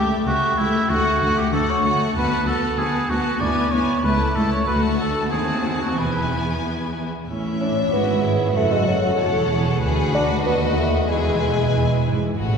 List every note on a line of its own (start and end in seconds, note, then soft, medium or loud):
0.00 0.26 A3 soft
0.00 0.26 G4 soft
0.00 0.26 E5 soft
0.27 0.35 C#2 medium
0.27 0.58 A3 soft
0.27 0.60 F#4 medium
0.27 0.58 G4 soft
0.27 0.57 E5 soft
0.58 0.67 C#2 soft
0.58 0.90 A3 soft
0.58 0.91 E4 medium
0.58 0.90 G4 soft
0.58 0.90 E5 soft
0.90 0.98 D2 soft
0.90 1.20 D2 medium
0.90 1.22 A3 medium
0.90 1.40 F#4 medium
0.90 1.21 F#4 medium
0.90 1.20 F#5 soft
1.21 1.30 D2 medium
1.21 1.53 A3 soft
1.21 1.52 F#4 soft
1.21 1.52 F#5 soft
1.38 1.53 G4 medium
1.53 1.61 D2 medium
1.53 1.84 A3 soft
1.53 1.84 F#4 soft
1.53 1.71 A4 medium
1.53 1.83 F#5 soft
1.70 2.01 C#5 medium
1.84 1.93 D2 soft
1.84 2.16 A3 soft
1.84 2.15 F#4 soft
1.84 2.15 F#5 soft
2.16 2.24 D2 medium
2.16 2.45 D2 medium
2.16 2.46 B3 medium
2.16 2.46 F#4 soft
2.16 2.46 B4 medium
2.16 2.46 A5 soft
2.47 2.55 D2 soft
2.47 2.78 B3 soft
2.47 2.77 F#4 soft
2.47 2.81 A4 medium
2.47 2.77 A5 soft
2.78 2.86 D2 medium
2.78 3.10 B3 soft
2.78 3.09 F#4 soft
2.78 3.11 G#4 medium
2.78 3.09 A5 soft
3.09 3.18 D2 soft
3.09 3.41 B3 soft
3.09 3.42 F#4 medium
3.09 3.41 F#4 soft
3.09 3.41 A5 soft
3.41 3.49 D2 medium
3.41 3.71 D2 medium
3.41 3.72 B3 medium
3.41 3.72 E4 soft
3.41 3.74 D5 medium
3.41 3.72 G#5 medium
3.72 3.80 D2 soft
3.72 4.04 B3 soft
3.72 4.04 E4 soft
3.72 4.04 C#5 medium
3.72 4.04 G#5 soft
4.04 4.34 C#2 soft
4.04 4.13 C#2 soft
4.04 4.35 A3 soft
4.04 4.35 E4 soft
4.04 4.37 B4 medium
4.04 4.35 A5 soft
4.35 4.44 C#2 soft
4.35 4.66 A3 soft
4.35 4.67 E4 soft
4.35 4.52 A4 medium
4.35 4.67 A5 soft
4.52 4.67 C#5 medium
4.67 5.27 D2 soft
4.67 4.97 A3 soft
4.67 5.27 F#4 soft
4.67 4.82 B4 medium
4.67 5.28 A5 soft
4.99 5.31 A3 soft
4.99 5.30 A4 medium
5.31 5.93 D#2 soft
5.31 5.98 D#2 soft
5.31 5.98 C4 soft
5.31 5.96 F#4 soft
5.31 5.80 G#4 medium
5.31 5.96 A5 soft
5.81 6.00 F#4 soft
5.97 6.59 E1 soft
5.97 7.06 E2 soft
5.97 7.08 B3 soft
5.97 7.08 E4 soft
5.97 6.63 B4 medium
5.97 7.08 G#5 soft
7.28 7.88 A1 soft
7.28 7.88 A2 soft
7.28 7.58 C#4 soft
7.28 7.89 E4 soft
7.28 8.52 E5 soft
7.61 7.90 C#4 medium
7.61 7.92 D4 soft
7.92 8.56 G#1 soft
7.92 8.56 G#2 soft
7.92 8.54 B3 medium
7.92 8.54 E4 soft
7.92 8.21 F#4 soft
7.92 8.24 F#4 soft
8.24 8.55 E4 soft
8.24 8.56 G#4 soft
8.55 9.18 F#1 soft
8.55 9.18 F#2 soft
8.55 8.74 A3 medium
8.55 9.18 F#4 soft
8.55 9.18 A4 soft
8.55 9.17 F#5 soft
8.73 8.87 G#3 medium
8.88 9.49 F#3 medium
9.18 9.81 E1 soft
9.18 9.81 E2 medium
9.18 9.82 A4 soft
9.18 9.51 A4 soft
9.18 9.82 C#5 soft
9.18 9.80 F#5 soft
9.50 9.82 G#4 soft
9.81 10.44 D2 soft
9.81 10.44 D2 medium
9.81 10.44 F#4 soft
9.81 10.13 G#4 medium
9.81 11.06 B4 medium
9.81 10.44 F#5 soft
10.14 10.28 D4 medium
10.14 11.10 F#4 medium
10.45 11.09 D#2 soft
10.45 11.09 D#2 medium
10.45 10.60 B3 medium
10.45 11.08 F#4 soft
10.45 11.08 D#5 medium
10.78 11.12 A3 soft
11.09 12.16 E1 soft
11.09 11.66 E2 medium
11.09 12.06 G#3 medium
11.09 12.16 E4 soft
11.09 12.04 G#4 soft
11.09 12.16 B4 soft
11.09 12.18 G#5 soft
11.74 12.04 E2 soft
12.06 12.37 G#2 soft
12.38 12.58 A1 medium
12.38 12.58 A2 medium
12.38 12.58 F#4 soft